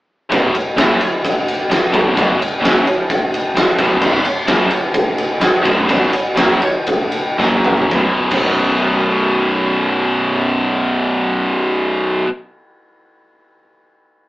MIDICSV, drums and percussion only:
0, 0, Header, 1, 2, 480
1, 0, Start_track
1, 0, Tempo, 462250
1, 326, Time_signature, 4, 2, 24, 8
1, 5127, Tempo, 485044
1, 7047, Tempo, 534283
1, 13705, End_track
2, 0, Start_track
2, 0, Title_t, "Drums"
2, 329, Note_on_c, 9, 51, 97
2, 333, Note_on_c, 9, 36, 106
2, 433, Note_off_c, 9, 51, 0
2, 437, Note_off_c, 9, 36, 0
2, 567, Note_on_c, 9, 51, 72
2, 671, Note_off_c, 9, 51, 0
2, 807, Note_on_c, 9, 51, 103
2, 814, Note_on_c, 9, 38, 119
2, 911, Note_off_c, 9, 51, 0
2, 917, Note_off_c, 9, 38, 0
2, 1047, Note_on_c, 9, 51, 73
2, 1151, Note_off_c, 9, 51, 0
2, 1294, Note_on_c, 9, 36, 106
2, 1301, Note_on_c, 9, 51, 102
2, 1398, Note_off_c, 9, 36, 0
2, 1405, Note_off_c, 9, 51, 0
2, 1539, Note_on_c, 9, 51, 77
2, 1643, Note_off_c, 9, 51, 0
2, 1776, Note_on_c, 9, 51, 103
2, 1782, Note_on_c, 9, 38, 121
2, 1880, Note_off_c, 9, 51, 0
2, 1886, Note_off_c, 9, 38, 0
2, 2013, Note_on_c, 9, 36, 106
2, 2015, Note_on_c, 9, 51, 71
2, 2117, Note_off_c, 9, 36, 0
2, 2119, Note_off_c, 9, 51, 0
2, 2256, Note_on_c, 9, 36, 108
2, 2264, Note_on_c, 9, 51, 103
2, 2360, Note_off_c, 9, 36, 0
2, 2367, Note_off_c, 9, 51, 0
2, 2512, Note_on_c, 9, 51, 78
2, 2616, Note_off_c, 9, 51, 0
2, 2750, Note_on_c, 9, 51, 97
2, 2756, Note_on_c, 9, 38, 116
2, 2854, Note_off_c, 9, 51, 0
2, 2860, Note_off_c, 9, 38, 0
2, 2981, Note_on_c, 9, 51, 72
2, 3085, Note_off_c, 9, 51, 0
2, 3219, Note_on_c, 9, 36, 105
2, 3224, Note_on_c, 9, 51, 96
2, 3323, Note_off_c, 9, 36, 0
2, 3328, Note_off_c, 9, 51, 0
2, 3467, Note_on_c, 9, 51, 75
2, 3571, Note_off_c, 9, 51, 0
2, 3702, Note_on_c, 9, 51, 94
2, 3708, Note_on_c, 9, 38, 123
2, 3806, Note_off_c, 9, 51, 0
2, 3812, Note_off_c, 9, 38, 0
2, 3931, Note_on_c, 9, 36, 100
2, 3934, Note_on_c, 9, 51, 73
2, 4035, Note_off_c, 9, 36, 0
2, 4038, Note_off_c, 9, 51, 0
2, 4172, Note_on_c, 9, 36, 106
2, 4173, Note_on_c, 9, 49, 96
2, 4276, Note_off_c, 9, 36, 0
2, 4277, Note_off_c, 9, 49, 0
2, 4413, Note_on_c, 9, 51, 74
2, 4517, Note_off_c, 9, 51, 0
2, 4649, Note_on_c, 9, 51, 105
2, 4656, Note_on_c, 9, 38, 116
2, 4753, Note_off_c, 9, 51, 0
2, 4759, Note_off_c, 9, 38, 0
2, 4887, Note_on_c, 9, 51, 73
2, 4991, Note_off_c, 9, 51, 0
2, 5132, Note_on_c, 9, 36, 104
2, 5133, Note_on_c, 9, 51, 111
2, 5231, Note_off_c, 9, 36, 0
2, 5232, Note_off_c, 9, 51, 0
2, 5370, Note_on_c, 9, 51, 77
2, 5469, Note_off_c, 9, 51, 0
2, 5594, Note_on_c, 9, 51, 101
2, 5600, Note_on_c, 9, 38, 114
2, 5693, Note_off_c, 9, 51, 0
2, 5699, Note_off_c, 9, 38, 0
2, 5836, Note_on_c, 9, 36, 100
2, 5836, Note_on_c, 9, 51, 80
2, 5935, Note_off_c, 9, 36, 0
2, 5935, Note_off_c, 9, 51, 0
2, 6070, Note_on_c, 9, 51, 102
2, 6071, Note_on_c, 9, 36, 104
2, 6169, Note_off_c, 9, 51, 0
2, 6170, Note_off_c, 9, 36, 0
2, 6307, Note_on_c, 9, 51, 78
2, 6406, Note_off_c, 9, 51, 0
2, 6544, Note_on_c, 9, 51, 104
2, 6550, Note_on_c, 9, 38, 116
2, 6643, Note_off_c, 9, 51, 0
2, 6649, Note_off_c, 9, 38, 0
2, 6790, Note_on_c, 9, 51, 69
2, 6889, Note_off_c, 9, 51, 0
2, 7037, Note_on_c, 9, 51, 106
2, 7046, Note_on_c, 9, 36, 105
2, 7127, Note_off_c, 9, 51, 0
2, 7136, Note_off_c, 9, 36, 0
2, 7263, Note_on_c, 9, 51, 72
2, 7353, Note_off_c, 9, 51, 0
2, 7501, Note_on_c, 9, 38, 64
2, 7591, Note_off_c, 9, 38, 0
2, 7736, Note_on_c, 9, 45, 92
2, 7826, Note_off_c, 9, 45, 0
2, 7854, Note_on_c, 9, 43, 87
2, 7944, Note_off_c, 9, 43, 0
2, 7967, Note_on_c, 9, 38, 84
2, 7978, Note_on_c, 9, 36, 101
2, 8057, Note_off_c, 9, 38, 0
2, 8068, Note_off_c, 9, 36, 0
2, 8331, Note_on_c, 9, 57, 87
2, 8340, Note_on_c, 9, 36, 106
2, 8421, Note_off_c, 9, 57, 0
2, 8430, Note_off_c, 9, 36, 0
2, 13705, End_track
0, 0, End_of_file